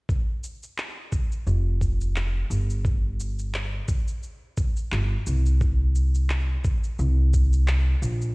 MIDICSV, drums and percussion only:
0, 0, Header, 1, 2, 480
1, 0, Start_track
1, 0, Tempo, 689655
1, 64, Time_signature, 4, 2, 24, 8
1, 5810, End_track
2, 0, Start_track
2, 0, Title_t, "Drums"
2, 63, Note_on_c, 9, 36, 103
2, 67, Note_on_c, 9, 82, 28
2, 132, Note_off_c, 9, 36, 0
2, 137, Note_off_c, 9, 82, 0
2, 304, Note_on_c, 9, 82, 69
2, 374, Note_off_c, 9, 82, 0
2, 438, Note_on_c, 9, 82, 39
2, 508, Note_off_c, 9, 82, 0
2, 544, Note_on_c, 9, 39, 86
2, 545, Note_on_c, 9, 82, 27
2, 614, Note_off_c, 9, 39, 0
2, 615, Note_off_c, 9, 82, 0
2, 782, Note_on_c, 9, 36, 97
2, 782, Note_on_c, 9, 82, 69
2, 851, Note_off_c, 9, 36, 0
2, 852, Note_off_c, 9, 82, 0
2, 918, Note_on_c, 9, 82, 38
2, 987, Note_off_c, 9, 82, 0
2, 1024, Note_on_c, 9, 82, 31
2, 1094, Note_off_c, 9, 82, 0
2, 1262, Note_on_c, 9, 36, 55
2, 1264, Note_on_c, 9, 82, 66
2, 1331, Note_off_c, 9, 36, 0
2, 1334, Note_off_c, 9, 82, 0
2, 1398, Note_on_c, 9, 82, 36
2, 1468, Note_off_c, 9, 82, 0
2, 1505, Note_on_c, 9, 39, 91
2, 1506, Note_on_c, 9, 82, 32
2, 1574, Note_off_c, 9, 39, 0
2, 1575, Note_off_c, 9, 82, 0
2, 1747, Note_on_c, 9, 82, 71
2, 1816, Note_off_c, 9, 82, 0
2, 1879, Note_on_c, 9, 82, 41
2, 1949, Note_off_c, 9, 82, 0
2, 1982, Note_on_c, 9, 36, 111
2, 1986, Note_on_c, 9, 82, 29
2, 2051, Note_off_c, 9, 36, 0
2, 2056, Note_off_c, 9, 82, 0
2, 2228, Note_on_c, 9, 82, 70
2, 2297, Note_off_c, 9, 82, 0
2, 2360, Note_on_c, 9, 82, 43
2, 2430, Note_off_c, 9, 82, 0
2, 2466, Note_on_c, 9, 39, 89
2, 2467, Note_on_c, 9, 82, 29
2, 2536, Note_off_c, 9, 39, 0
2, 2537, Note_off_c, 9, 82, 0
2, 2703, Note_on_c, 9, 36, 100
2, 2703, Note_on_c, 9, 82, 69
2, 2772, Note_off_c, 9, 36, 0
2, 2772, Note_off_c, 9, 82, 0
2, 2838, Note_on_c, 9, 82, 43
2, 2908, Note_off_c, 9, 82, 0
2, 2944, Note_on_c, 9, 82, 31
2, 3013, Note_off_c, 9, 82, 0
2, 3183, Note_on_c, 9, 82, 69
2, 3184, Note_on_c, 9, 36, 104
2, 3253, Note_off_c, 9, 82, 0
2, 3254, Note_off_c, 9, 36, 0
2, 3317, Note_on_c, 9, 82, 39
2, 3386, Note_off_c, 9, 82, 0
2, 3425, Note_on_c, 9, 39, 95
2, 3426, Note_on_c, 9, 82, 32
2, 3494, Note_off_c, 9, 39, 0
2, 3496, Note_off_c, 9, 82, 0
2, 3666, Note_on_c, 9, 82, 78
2, 3735, Note_off_c, 9, 82, 0
2, 3799, Note_on_c, 9, 82, 41
2, 3869, Note_off_c, 9, 82, 0
2, 3904, Note_on_c, 9, 36, 111
2, 3907, Note_on_c, 9, 82, 31
2, 3974, Note_off_c, 9, 36, 0
2, 3976, Note_off_c, 9, 82, 0
2, 4145, Note_on_c, 9, 82, 72
2, 4214, Note_off_c, 9, 82, 0
2, 4279, Note_on_c, 9, 82, 42
2, 4349, Note_off_c, 9, 82, 0
2, 4383, Note_on_c, 9, 39, 88
2, 4384, Note_on_c, 9, 82, 29
2, 4453, Note_off_c, 9, 39, 0
2, 4454, Note_off_c, 9, 82, 0
2, 4624, Note_on_c, 9, 82, 75
2, 4625, Note_on_c, 9, 36, 104
2, 4694, Note_off_c, 9, 82, 0
2, 4695, Note_off_c, 9, 36, 0
2, 4758, Note_on_c, 9, 82, 41
2, 4828, Note_off_c, 9, 82, 0
2, 4864, Note_on_c, 9, 82, 33
2, 4934, Note_off_c, 9, 82, 0
2, 5106, Note_on_c, 9, 36, 59
2, 5106, Note_on_c, 9, 82, 70
2, 5175, Note_off_c, 9, 36, 0
2, 5176, Note_off_c, 9, 82, 0
2, 5241, Note_on_c, 9, 82, 41
2, 5310, Note_off_c, 9, 82, 0
2, 5344, Note_on_c, 9, 39, 96
2, 5345, Note_on_c, 9, 82, 34
2, 5414, Note_off_c, 9, 39, 0
2, 5415, Note_off_c, 9, 82, 0
2, 5587, Note_on_c, 9, 82, 75
2, 5657, Note_off_c, 9, 82, 0
2, 5719, Note_on_c, 9, 82, 40
2, 5788, Note_off_c, 9, 82, 0
2, 5810, End_track
0, 0, End_of_file